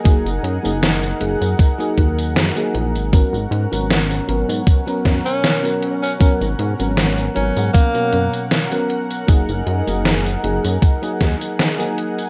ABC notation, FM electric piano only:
X:1
M:4/4
L:1/16
Q:"Swing 16ths" 1/4=78
K:F#
V:1 name="FM electric piano"
[F,A,DG] z2 [F,A,DG]3 [F,A,DG]3 [F,A,DG]4 [F,A,DG]3 | [F,B,CA] z2 [F,B,CA]3 [F,B,CA]3 [F,B,CA]4 [F,B,CA]3 | [F,B,CA] z2 [F,B,CA]3 [F,B,CA]3 [B,,F,CA]4 [F,B,CA]3 | [F,A,DG] z2 [F,A,DG]3 [F,A,DG]3 [F,A,DG]4 [F,A,DG]3 |]